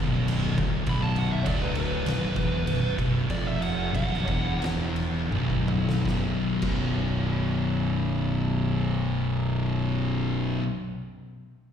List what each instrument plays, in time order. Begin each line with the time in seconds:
Already playing: string machine B3 F#4 A4
0.00 fingered electric bass B0, distorted electric guitar B1
0.28 crash
0.58 fingered electric bass D1, distorted electric guitar D2, kick, crash
0.86 fingered electric bass B0, distorted electric guitar B1, lead electric guitar B5, kick, crash
1.03 lead electric guitar A5
1.16 lead electric guitar F#5, crash
1.33 lead electric guitar E5
1.46 fingered electric bass D1, distorted electric guitar D2, lead electric guitar D5, kick, crash
1.62 lead electric guitar B4
1.75 lead electric guitar B4, crash
2.06 fingered electric bass B0, distorted electric guitar B1, snare, crash
2.36 fingered electric bass E1, distorted electric guitar E2, kick, crash
2.67 fingered electric bass B0, distorted electric guitar B1, crash
2.98 fingered electric bass B0, distorted electric guitar B1, kick, crash
3.29 fingered electric bass F1, distorted electric guitar F2, lead electric guitar D5, kick, crash
3.47 lead electric guitar E5
3.62 lead electric guitar F#5, crash
3.93 fingered electric bass B0, distorted electric guitar B1, lead electric guitar F#5, kick, crash
4.14 snare
4.27 fingered electric bass E1, distorted electric guitar E2, kick, crash
4.62 snare, crash
4.96 crash
5.31 fingered electric bass B0, distorted electric guitar B1, high tom
5.50 kick
5.68 mid tom
5.89 snare
6.05 fingered electric bass B0, distorted electric guitar B1 F#2 B2, kick, snare
6.61 fingered electric bass B0, distorted electric guitar B1 F#2, kick, crash
6.66 distorted electric guitar B2